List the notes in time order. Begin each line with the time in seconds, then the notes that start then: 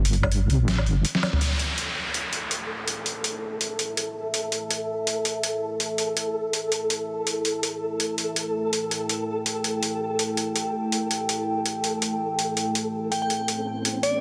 Already playing: G1
0.05 closed hi-hat
0.13 closed hi-hat
0.23 kick, low woodblock
0.32 closed hi-hat
0.50 C2, closed hi-hat
0.60 A1
0.68 snare, closed hi-hat
0.78 low woodblock
0.86 G1, closed hi-hat
1.05 closed hi-hat
1.15 snare
1.23 snare, closed hi-hat, low woodblock
1.33 mid tom
1.41 A3 A4, closed hi-hat, downlifter
1.59 closed hi-hat
1.74 E4
1.78 closed hi-hat
1.88 A4
2.14 closed hi-hat
2.33 closed hi-hat
2.51 E5, closed hi-hat
2.88 closed hi-hat
3.06 closed hi-hat
3.24 closed hi-hat
3.61 closed hi-hat
3.79 closed hi-hat
3.97 closed hi-hat
4.34 closed hi-hat
4.52 closed hi-hat
4.71 closed hi-hat
5.07 closed hi-hat
5.25 closed hi-hat
5.43 closed hi-hat
5.80 closed hi-hat
5.98 closed hi-hat
6.17 closed hi-hat
6.53 closed hi-hat
6.72 closed hi-hat
6.90 closed hi-hat
7.27 closed hi-hat
7.45 closed hi-hat
7.63 closed hi-hat
8.00 closed hi-hat
8.18 closed hi-hat
8.36 G5, closed hi-hat
8.73 closed hi-hat
8.91 closed hi-hat
9.09 closed hi-hat
9.46 closed hi-hat
9.64 closed hi-hat
9.83 closed hi-hat
10.19 closed hi-hat
10.37 closed hi-hat
10.56 closed hi-hat
10.92 closed hi-hat
11.11 closed hi-hat
11.29 closed hi-hat
11.66 closed hi-hat
11.84 closed hi-hat
12.02 closed hi-hat
12.39 closed hi-hat
12.57 closed hi-hat
12.75 closed hi-hat
13.12 C4 G5, closed hi-hat
13.22 G5
13.30 closed hi-hat
13.48 closed hi-hat
13.85 closed hi-hat
14.03 D5, closed hi-hat